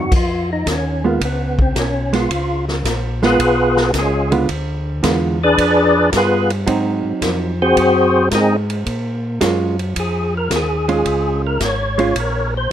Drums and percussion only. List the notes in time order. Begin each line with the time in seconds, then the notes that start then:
0.12 kick, crash
0.66 kick, snare, hi-hat pedal, ride
1.21 kick, ride
1.59 kick
1.75 kick, snare, hi-hat pedal, ride
2.13 snare, ride
2.30 kick, ride
2.68 snare
2.85 kick, snare, hi-hat pedal, ride
3.22 snare
3.39 kick, ride
3.77 snare
3.94 kick, snare, hi-hat pedal, ride
4.32 ride
4.49 kick, ride
5.03 kick, snare, hi-hat pedal, ride
5.58 kick, ride
6.12 kick, snare, hi-hat pedal, ride
6.50 ride
6.67 kick, ride
7.22 kick, snare, hi-hat pedal, ride
7.77 kick, ride
8.31 kick, snare, hi-hat pedal, ride
8.70 ride
8.86 kick, ride
9.41 kick, snare, hi-hat pedal, ride
9.79 ride
9.96 kick, ride
10.51 kick, snare, hi-hat pedal, ride
10.89 ride
11.05 kick, ride
11.60 kick, snare, hi-hat pedal, ride
11.99 ride
12.15 kick, ride